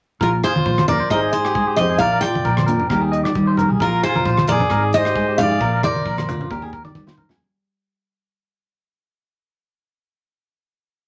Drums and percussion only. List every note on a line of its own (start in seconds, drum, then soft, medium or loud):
0.21 kick medium
0.43 cross-stick medium
0.43 closed hi-hat soft
0.56 high conga medium
0.66 kick medium
0.78 cross-stick medium
0.78 high conga medium
0.88 closed hi-hat medium
0.88 low conga medium
1.10 kick medium
1.10 cross-stick medium
1.33 closed hi-hat soft
1.45 cross-stick medium
1.55 kick medium
1.77 cross-stick medium
1.77 closed hi-hat soft
1.77 low conga medium
2.00 kick medium
2.23 cross-stick medium
2.23 closed hi-hat soft
2.35 high conga medium
2.45 kick medium
2.57 cross-stick medium
2.57 high conga medium
2.68 closed hi-hat medium
2.68 low conga medium
2.80 low conga medium
2.90 kick medium
2.90 cross-stick medium
3.13 closed hi-hat soft
3.25 cross-stick medium
3.36 kick medium
3.57 closed hi-hat soft
3.57 low conga medium
3.80 kick medium
4.03 cross-stick medium
4.03 closed hi-hat soft
4.15 high conga medium
4.25 kick medium
4.37 cross-stick medium
4.37 high conga medium
4.47 closed hi-hat medium
4.47 low conga medium
4.60 low conga medium
4.70 kick medium
4.70 cross-stick medium
4.93 closed hi-hat soft
5.05 cross-stick medium
5.16 kick medium
5.38 cross-stick medium
5.38 closed hi-hat soft
5.38 low conga medium
5.61 kick medium
5.83 cross-stick medium
5.83 closed hi-hat soft
5.83 high conga medium
5.95 high conga medium
6.05 kick medium
6.18 cross-stick medium
6.18 high conga medium
6.29 closed hi-hat soft
6.29 low conga medium
6.41 low conga medium
6.51 kick medium
6.62 kick soft
6.73 kick medium
6.85 kick soft
6.85 high conga soft
6.95 kick loud
6.95 high conga medium
7.07 snare medium
7.07 high conga medium
7.17 kick medium
7.17 low conga medium
7.29 snare medium
7.29 low conga medium